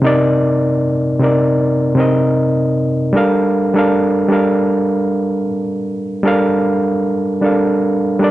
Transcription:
0.00 0.02 C3 medium
0.00 0.84 C3 loud
0.00 0.03 C4 medium
0.00 0.85 C4 medium
0.00 0.04 D#4 medium
0.00 0.05 A#4 medium
0.00 0.07 D5 medium
0.04 0.85 D#4 medium
0.04 0.86 A#4 medium
0.04 0.87 D5 loud
1.20 1.78 C3 medium
1.20 1.78 C4 medium
1.20 1.79 D#4 medium
1.20 1.80 A#4 medium
1.24 1.80 D5 medium
1.95 2.78 C3 medium
1.95 2.79 C4 medium
1.95 2.79 D#4 medium
1.95 2.80 A#4 medium
2.00 2.81 D#5 medium
3.13 3.54 G3 medium
3.13 3.55 D4 medium
3.13 3.56 A4 medium
3.13 3.56 A#4 medium
3.17 3.57 F5 loud
3.74 4.16 G3 medium
3.74 4.17 D4 medium
3.74 4.17 A4 medium
3.74 4.18 A#4 medium
3.79 4.18 F5 medium
4.28 5.40 G3 medium
4.28 5.41 D4 medium
4.28 5.42 A4 medium
4.28 5.42 A#4 medium
4.33 5.43 F5 medium
6.23 7.07 G3 medium
6.23 7.07 D4 medium
6.23 7.08 A4 medium
6.23 7.08 A#4 medium
6.28 7.09 F5 loud
7.41 8.00 G3 medium
7.41 8.01 D4 medium
7.41 8.02 A4 medium
7.41 8.02 A#4 medium
7.46 8.02 F5 medium
8.19 8.31 G3 medium
8.19 8.31 D4 medium
8.19 8.31 A4 medium
8.19 8.31 A#4 medium
8.24 8.31 D5 loud

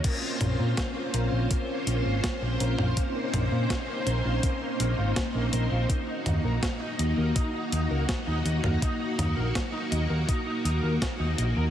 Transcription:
0.04 0.13 A#3 medium
0.04 11.70 A#3 medium
0.04 5.86 C4 medium
0.04 5.86 C#4 medium
0.04 2.94 F4 medium
0.04 5.86 C5 medium
0.04 kick loud
0.04 closed hi-hat medium
0.04 crash medium
0.23 0.32 A#3 medium
0.41 0.54 A#1 medium
0.41 0.55 A#3 medium
0.41 closed hi-hat medium
0.41 mid tom medium
0.59 0.73 A#2 medium
0.59 0.68 F4 medium
0.77 kick loud
0.77 snare loud
0.77 closed hi-hat loud
0.96 1.05 A#3 loud
1.14 1.27 A#1 medium
1.14 1.23 A#4 medium
1.14 closed hi-hat medium
1.32 1.46 A#1 medium
1.32 1.38 F4 medium
1.50 1.60 A#3 medium
1.50 kick loud
1.50 closed hi-hat medium
1.69 1.78 A#3 medium
1.87 2.00 A#1 medium
1.87 2.01 A#3 medium
1.87 closed hi-hat medium
2.05 2.19 G#1 medium
2.05 2.15 F4 medium
2.24 kick loud
2.24 snare loud
2.24 closed hi-hat loud
2.42 2.56 A#1 medium
2.42 2.51 A#3 loud
2.60 2.74 A#1 medium
2.60 2.69 A#4 medium
2.60 closed hi-hat medium
2.79 2.92 A#1 medium
2.79 2.84 F4 medium
2.79 mid tom medium
2.97 3.06 A#3 medium
2.97 11.70 D#4 medium
2.97 kick loud
2.97 closed hi-hat loud
3.15 3.24 A#3 medium
3.34 3.47 A#1 medium
3.34 3.47 A#3 medium
3.34 closed hi-hat medium
3.34 mid tom medium
3.52 3.65 A#2 medium
3.52 3.61 F4 medium
3.70 kick loud
3.70 snare loud
3.70 closed hi-hat loud
3.88 3.98 A#3 loud
4.07 4.20 A#1 medium
4.07 4.16 A#4 medium
4.07 closed hi-hat medium
4.25 4.39 A#1 medium
4.25 4.30 F4 medium
4.43 4.52 A#3 medium
4.43 kick loud
4.43 closed hi-hat loud
4.62 4.71 A#3 medium
4.80 4.93 A#1 medium
4.80 4.93 A#3 medium
4.80 closed hi-hat medium
4.98 5.12 G#1 medium
4.98 5.07 F4 medium
5.16 kick loud
5.16 snare loud
5.16 closed hi-hat medium
5.35 5.48 A#1 medium
5.35 5.44 A#3 loud
5.53 5.67 A#1 medium
5.53 5.62 A#4 medium
5.53 closed hi-hat medium
5.71 5.85 A#1 medium
5.71 5.77 F4 medium
5.89 5.99 D#4 medium
5.89 11.70 F#4 medium
5.89 kick loud
5.89 closed hi-hat medium
6.08 6.17 D#4 medium
6.26 6.40 D#2 medium
6.26 6.40 D#4 medium
6.26 closed hi-hat medium
6.26 mid tom loud
6.44 6.58 A#1 medium
6.44 6.54 A#4 medium
6.63 kick loud
6.63 snare loud
6.63 closed hi-hat medium
6.81 6.90 D#4 loud
6.99 7.13 D#2 medium
6.99 7.08 D#5 medium
6.99 closed hi-hat medium
7.18 7.31 D#2 medium
7.18 7.23 A#4 medium
7.36 7.45 D#4 medium
7.36 kick loud
7.36 closed hi-hat medium
7.54 7.63 D#4 medium
7.72 7.86 D#2 medium
7.72 7.86 D#4 medium
7.72 closed hi-hat medium
7.91 8.04 C#2 medium
7.91 8.00 A#4 medium
8.09 kick loud
8.09 snare loud
8.09 closed hi-hat medium
8.27 8.41 D#2 medium
8.27 8.36 D#4 loud
8.45 8.59 D#2 medium
8.45 8.55 D#5 medium
8.45 closed hi-hat medium
8.64 8.77 D#2 medium
8.64 8.69 A#4 medium
8.64 mid tom loud
8.82 8.91 D#4 medium
8.82 kick loud
8.82 closed hi-hat medium
9.00 9.10 D#4 medium
9.19 9.32 D#2 medium
9.19 9.32 D#4 medium
9.19 closed hi-hat medium
9.19 mid tom loud
9.37 9.51 A#1 medium
9.37 9.46 A#4 medium
9.55 kick loud
9.55 snare loud
9.55 closed hi-hat medium
9.73 9.83 D#4 loud
9.92 10.05 D#2 medium
9.92 10.01 D#5 medium
9.92 closed hi-hat medium
10.10 10.24 D#2 medium
10.10 10.16 A#4 medium
10.28 10.38 D#4 medium
10.28 kick loud
10.28 closed hi-hat medium
10.46 10.56 D#4 medium
10.65 10.79 D#2 medium
10.65 10.79 D#4 medium
10.65 closed hi-hat medium
10.83 10.97 D#2 medium
10.83 10.92 A#4 medium
11.02 kick loud
11.02 snare loud
11.02 closed hi-hat loud
11.20 11.33 D#2 medium
11.20 11.29 D#4 loud
11.38 11.52 A#1 medium
11.38 11.47 D#5 medium
11.38 closed hi-hat medium
11.56 11.70 D#2 medium
11.56 11.62 A#4 medium

